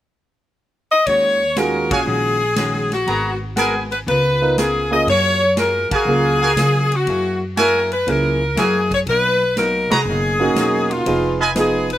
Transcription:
0.92 D#5
1.06 D#2 D#3 G#3 C#4 F#4 C#5, kick, ride
1.56 D#3 G#3 C#4 F4 F#4 G#4 A#4, snare, hi-hat pedal, ride
1.90 A#2 F#4 G#4 C#5 F5 G#5, kick, ride
2.06 A#1 D#3 G#3 C#4 F#4
2.56 D#3 G#3 C#4 F#4, snare, hi-hat pedal, ride
2.92 F#4, snare, ride
3.07 G#1 G#3 B3 F#4 G#4 A#4 B4 F#5 A#5, kick, ride
3.56 G#3 B3 F#4 G#4 A#4 B4 F#5 G#5, snare, hi-hat pedal, ride
3.92 B4, ride
4.06 C#2 C#3 B3 F4 A#4 B4, kick, ride
4.41 B3 D#4 F4 A#4
4.58 C#3 B3 F4 G#4 A#4, snare, hi-hat pedal, ride
4.91 A#3 C#4 F4 G#4 D#5
5.07 F#2 F#3 A#3 F4 G#4 C#5, kick, ride
5.56 F#3 A#3 F4 G#4 A#4, snare, hi-hat pedal, ride
5.91 F#4 G#4 A#4 F5 G#5, muted upright bass stroke, kick, ride
6.05 C#2 F#3 A#3 C#4 F4 G#4
6.41 F#4 A#4 F5 G#5
6.56 C#3 F#3 A#3 F4 G#4, snare, hi-hat pedal, ride
6.92 F#4, ride
7.06 F#2 F#3 A#3 E4 G#4, kick, ride
7.57 F#3 A#3 E4 F#4 G#4 A#4 E5 G#5, snare, hi-hat pedal, ride
7.92 B4, ride
8.07 C#2 F#3 A#3 C#4 E4 G#4 A#4, kick, ride
8.55 F#2 F#3 A#3 E4 F#4 G#4 A#4 E5 G#5, snare, hi-hat pedal, ride
8.91 C#5, kick, ride
9.06 B1 B2 F#3 A#3 D#4 B4, kick, ride
9.57 B2 F#3 A#3 D#4 A#4, snare, hi-hat pedal, ride
9.90 C2 F#4 G#4 B4 D#5 A#5, snare, ride
10.05 F#1 B2 F#3
10.10 A#3 D#4
10.40 A#3 C#4 D#4 F#4
10.55 E1 B2 F#3 A#3 D#4, snare, hi-hat pedal, ride
10.91 F4, ride
11.06 F1 F3 B3 D#4 F4 G#4, kick, ride
11.40 F4 B4 D#5 G#5
11.55 F3 B3 D#4 F4 G#4, snare, hi-hat pedal, ride
11.59 G#4
11.90 B4, ride

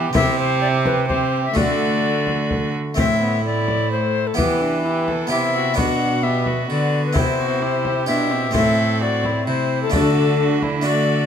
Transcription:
Already playing: E3 B3 E4 G4
0.13 C3 C4 E4 G4 E5, frame drum
0.39 C5
0.61 D5
0.86 B4, frame drum
1.08 C4 G4 C5, frame drum
1.45 E5
1.54 D3 A3 F#4 D5, frame drum
2.27 frame drum
2.51 frame drum
2.94 A2 A3 C4 E4 E5, frame drum
3.21 B3
3.44 A3 D5
3.68 frame drum
3.91 A3 C5
4.27 A4
4.34 E3 B3 E4 G4 B4
4.38 frame drum
4.61 D4
4.85 E4 G4
5.08 A4, frame drum
5.27 C3 B3 E4 G4 E5
5.31 C3 E4
5.55 F#4
5.74 B2 B3 D4 F#4 F#5, frame drum
5.78 D4
6.23 B3 G4 E5
6.46 F#4, frame drum
6.70 D3 B3 D5
7.06 B4
7.13 C3 C4 E4, frame drum
7.17 C5
7.39 F#4
7.62 E4 G4
7.85 frame drum
8.06 B2 D4 E4 C5 E5
8.31 C4
8.51 A2 A3 C4 E4, frame drum
8.55 A2 A4 E5
9.01 F#4 D5
9.24 E4, frame drum
9.46 C3 E4 C5
9.83 A4
9.90 D3 A3 D4 F#4, frame drum
9.94 D4 A4
10.16 D4
10.40 F#4
10.62 E4, frame drum
10.81 A3 D4 F#4
10.87 D5

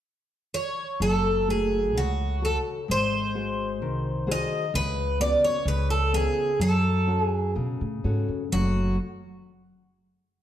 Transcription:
0.54 C#5
1.00 F#1 F#3 A4
1.48 A3 F#4 G#4
1.95 C#2 C#3 F#4
2.42 F#4 A4
2.88 G#1 G#3 C5
3.35 F#4 G#4 C5
3.82 C2 D#3
4.27 F#4 G#4 C5
4.32 D#5
4.74 C#2 C#3 B4
5.20 B3 C#4 F#4 D5
5.44 C#5
5.65 C#2 C#3 B4
5.90 A4
6.13 B3 C#4 F4 G#4
6.60 F#2 F#3 A4
7.07 C#4 F#4 A4
7.22 G#4
7.55 B2 C#3
7.81 A2
8.04 G#2 C#4 F#4 A4
8.29 F#2
8.52 F#1 F#2 C#3 F#3 A3 C#4 F#4

